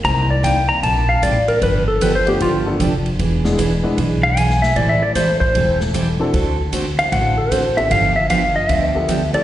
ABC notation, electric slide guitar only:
X:1
M:4/4
L:1/8
Q:"Swing" 1/4=153
K:Gmix
V:1 name="Electric slide guitar"
_b d g b a f d _B | B A (3B c G F z3 | z4 z f ^g e | (3d e d c c2 z3 |
z3 f ^f A c e | f e f _e =e3 d |]